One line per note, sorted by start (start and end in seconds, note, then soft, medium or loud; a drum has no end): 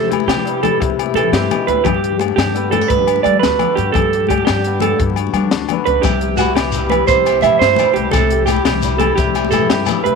0.00 0.11 C3 medium
0.00 0.22 C3 medium
0.00 0.45 G3 medium
0.00 0.28 G4 medium
0.00 low conga medium
0.09 1.15 E3 medium
0.09 0.63 E4 medium
0.09 muted clean electric guitar stroke medium
0.09 closed hi-hat soft
0.09 high conga medium
0.13 low agogo medium
0.20 muted conga medium
0.27 0.73 C3 medium
0.27 0.61 G4 medium
0.27 1.01 G4 medium
0.27 snare medium
0.27 closed hi-hat medium
0.27 low agogo medium
0.37 high conga medium
0.37 low conga medium
0.45 0.80 G2 medium
0.45 2.55 G3 medium
0.45 closed hi-hat medium
0.63 1.16 E4 medium
0.63 0.80 A4 medium
0.63 closed hi-hat soft
0.63 muted conga medium
0.63 high conga medium
0.63 low conga medium
0.63 low agogo medium
0.80 1.16 C3 medium
0.80 1.12 C3 medium
0.80 muted clean electric guitar stroke medium
0.80 kick medium
0.80 closed hi-hat medium
0.90 high conga medium
0.90 low conga medium
0.99 2.04 G4 medium
0.99 closed hi-hat medium
0.99 low agogo medium
1.06 muted conga medium
1.06 low conga soft
1.14 1.30 C3 medium
1.14 1.84 E3 medium
1.14 1.32 A4 medium
1.14 closed hi-hat soft
1.14 high conga loud
1.14 low agogo medium
1.19 1.85 E4 medium
1.23 low conga medium
1.32 1.48 G2 medium
1.32 1.52 C3 medium
1.32 1.66 G4 medium
1.32 snare medium
1.32 closed hi-hat medium
1.41 high conga medium
1.51 1.69 B2 medium
1.51 closed hi-hat soft
1.51 muted conga medium
1.51 low conga loud
1.51 low agogo medium
1.67 1.83 D2 loud
1.67 1.87 A2 medium
1.67 1.84 B4 medium
1.67 closed hi-hat medium
1.67 high conga medium
1.84 2.89 G2 medium
1.84 2.32 G2 medium
1.84 2.18 G4 medium
1.84 kick medium
1.84 closed hi-hat medium
1.84 muted conga medium
1.84 low conga loud
1.84 low agogo medium
1.94 high conga medium
1.94 low conga soft
2.04 2.38 G4 soft
2.04 closed hi-hat medium
2.12 low conga medium
2.19 2.53 D3 medium
2.19 2.72 D4 medium
2.19 muted clean electric guitar stroke medium
2.19 closed hi-hat medium
2.19 high conga loud
2.19 low agogo medium
2.28 muted conga medium
2.36 2.83 G2 loud
2.36 2.70 G4 medium
2.36 3.07 G4 medium
2.36 snare medium
2.36 closed hi-hat medium
2.36 low agogo medium
2.46 high conga medium
2.46 low conga medium
2.54 3.23 D3 medium
2.54 2.71 B3 medium
2.54 closed hi-hat medium
2.71 2.81 B3 medium
2.71 2.88 A4 medium
2.71 closed hi-hat soft
2.71 muted conga medium
2.71 high conga medium
2.71 low conga medium
2.71 low agogo medium
2.81 3.24 D4 soft
2.88 3.92 G2 medium
2.88 3.21 G2 medium
2.88 3.22 B4 medium
2.88 kick medium
2.88 closed hi-hat medium
2.99 high conga medium
2.99 low conga medium
3.07 muted steel-string acoustic guitar stroke medium
3.07 closed hi-hat medium
3.07 low agogo medium
3.16 muted conga medium
3.16 low conga soft
3.23 3.58 D3 medium
3.23 3.40 G3 medium
3.23 3.77 D4 medium
3.23 3.39 D5 medium
3.23 closed hi-hat soft
3.23 high conga medium
3.23 low agogo medium
3.34 low conga medium
3.39 3.58 D2 medium
3.39 3.74 B4 medium
3.39 snare medium
3.39 closed hi-hat medium
3.44 3.93 F#4 medium
3.51 high conga medium
3.59 3.92 D3 medium
3.59 3.93 B3 medium
3.59 closed hi-hat soft
3.59 muted conga medium
3.59 low conga medium
3.59 low agogo medium
3.75 3.93 G2 medium
3.75 3.92 G4 medium
3.75 closed hi-hat soft
3.75 high conga medium
3.92 4.97 G2 medium
3.92 4.40 G2 medium
3.92 4.27 A4 medium
3.92 kick medium
3.92 closed hi-hat medium
3.92 muted conga medium
3.92 low conga medium
3.92 low agogo medium
4.02 high conga medium
4.13 4.48 G4 soft
4.13 closed hi-hat medium
4.20 low conga medium
4.27 4.65 D3 medium
4.27 4.82 D4 medium
4.27 4.44 G4 medium
4.27 kick medium
4.27 closed hi-hat medium
4.27 high conga medium
4.31 low agogo medium
4.38 muted conga medium
4.45 4.93 G2 medium
4.45 4.79 G4 medium
4.45 5.18 G4 medium
4.45 snare medium
4.45 closed hi-hat medium
4.45 low agogo medium
4.55 high conga medium
4.55 low conga medium
4.63 5.34 D3 medium
4.63 5.70 B3 medium
4.63 closed hi-hat medium
4.63 low conga soft
4.80 4.98 A4 medium
4.80 closed hi-hat medium
4.80 muted conga medium
4.80 high conga medium
4.80 low conga medium
4.80 low agogo medium
4.91 low conga soft
4.99 6.01 G2 medium
4.99 5.30 G2 medium
4.99 kick medium
4.99 closed hi-hat medium
4.99 low conga soft
5.10 high conga medium
5.10 low conga medium
5.16 5.51 F#4 medium
5.16 closed hi-hat soft
5.16 low conga soft
5.16 low agogo medium
5.27 muted conga medium
5.33 5.70 D3 medium
5.33 5.49 G3 medium
5.33 5.87 D4 medium
5.33 closed hi-hat medium
5.33 high conga medium
5.33 low agogo medium
5.44 low conga medium
5.51 5.66 D2 medium
5.51 6.02 F#4 medium
5.51 snare loud
5.51 closed hi-hat medium
5.62 high conga medium
5.69 6.03 D3 medium
5.69 6.03 B3 medium
5.69 closed hi-hat soft
5.69 muted conga medium
5.69 low conga medium
5.69 low agogo medium
5.79 low conga soft
5.86 6.02 C#2 medium
5.86 6.03 D4 medium
5.86 6.02 B4 medium
5.86 closed hi-hat soft
5.86 high conga medium
5.95 low conga soft
6.02 6.50 C2 medium
6.02 6.39 C3 medium
6.02 6.36 G4 medium
6.02 kick medium
6.02 closed hi-hat medium
6.02 muted conga medium
6.02 low conga medium
6.02 low agogo medium
6.02 shekere loud
6.12 high conga medium
6.12 low conga soft
6.21 6.57 G4 soft
6.21 closed hi-hat medium
6.29 low conga soft
6.37 7.43 E3 medium
6.37 6.92 E4 medium
6.37 6.54 F#4 medium
6.37 closed hi-hat soft
6.37 high conga medium
6.37 low agogo medium
6.37 shekere medium
6.46 muted conga medium
6.55 7.01 C2 medium
6.55 6.89 G4 medium
6.55 7.29 G4 medium
6.55 snare medium
6.55 closed hi-hat medium
6.55 low agogo medium
6.65 high conga medium
6.65 low conga medium
6.72 7.09 G2 medium
6.72 closed hi-hat soft
6.72 shekere medium
6.76 7.80 G3 soft
6.89 7.44 E4 medium
6.89 7.07 B4 medium
6.89 closed hi-hat soft
6.89 muted conga medium
6.89 high conga medium
6.89 low conga medium
6.89 low agogo medium
7.07 7.39 C2 medium
7.07 7.41 C5 medium
7.07 kick medium
7.07 closed hi-hat medium
7.07 shekere medium
7.11 7.45 C3 medium
7.11 high conga medium
7.11 low conga medium
7.26 7.62 G4 medium
7.26 closed hi-hat soft
7.26 low agogo medium
7.26 shekere soft
7.32 muted conga medium
7.32 low conga soft
7.41 7.58 C3 medium
7.41 8.12 E3 medium
7.41 7.59 E5 medium
7.41 closed hi-hat soft
7.41 high conga medium
7.41 low agogo medium
7.41 shekere medium
7.45 7.96 E4 medium
7.50 low conga medium
7.59 7.76 G2 medium
7.59 8.12 A4 medium
7.59 7.93 C5 medium
7.59 snare medium
7.59 closed hi-hat medium
7.67 high conga medium
7.76 muted steel-string acoustic guitar stroke medium
7.76 closed hi-hat soft
7.76 muted conga medium
7.76 low conga medium
7.76 low agogo medium
7.76 shekere medium
7.81 8.84 G3 medium
7.94 8.11 C2 medium
7.94 8.12 E4 medium
7.94 8.11 G4 medium
7.94 closed hi-hat soft
7.94 high conga medium
8.11 8.59 C2 medium
8.11 8.45 A4 medium
8.11 kick medium
8.11 closed hi-hat medium
8.11 muted conga loud
8.11 low conga loud
8.11 low agogo medium
8.11 shekere medium
8.16 8.50 C3 medium
8.16 high conga medium
8.16 low conga soft
8.30 8.65 G4 soft
8.30 closed hi-hat medium
8.39 low conga medium
8.46 8.63 G4 medium
8.46 muted steel-string acoustic guitar stroke medium
8.46 closed hi-hat medium
8.46 high conga medium
8.46 low agogo medium
8.46 shekere medium
8.51 9.01 E4 medium
8.56 muted conga medium
8.65 9.11 C2 loud
8.65 8.98 G4 medium
8.65 9.36 G4 medium
8.65 snare medium
8.65 closed hi-hat medium
8.65 low agogo medium
8.74 high conga medium
8.74 low conga medium
8.82 9.18 G2 medium
8.82 9.88 G3 medium
8.82 closed hi-hat medium
8.82 shekere medium
8.98 9.51 E4 medium
8.98 9.15 A4 medium
8.98 closed hi-hat medium
8.98 muted conga medium
8.98 high conga loud
8.98 low conga medium
8.98 low agogo medium
9.16 9.48 C2 medium
9.16 9.53 C3 medium
9.16 9.50 G4 medium
9.16 kick medium
9.16 closed hi-hat medium
9.16 shekere medium
9.27 high conga medium
9.27 low conga medium
9.35 9.70 G4 medium
9.35 closed hi-hat soft
9.35 low agogo medium
9.35 shekere soft
9.45 muted conga medium
9.45 low conga soft
9.51 9.68 C3 medium
9.51 10.15 E3 medium
9.51 10.05 E4 medium
9.51 9.68 A4 medium
9.51 closed hi-hat soft
9.51 high conga medium
9.51 low agogo medium
9.51 shekere medium
9.62 low conga medium
9.69 9.85 G2 medium
9.69 10.03 G4 medium
9.69 10.15 A4 medium
9.69 snare medium
9.69 closed hi-hat medium
9.80 high conga medium
9.86 10.15 G2 medium
9.86 10.15 G3 medium
9.86 closed hi-hat soft
9.86 muted conga medium
9.86 low conga medium
9.86 low agogo medium
9.86 shekere medium
10.04 10.15 C2 medium
10.04 10.15 E4 medium
10.04 10.15 B4 medium
10.04 closed hi-hat soft
10.04 high conga medium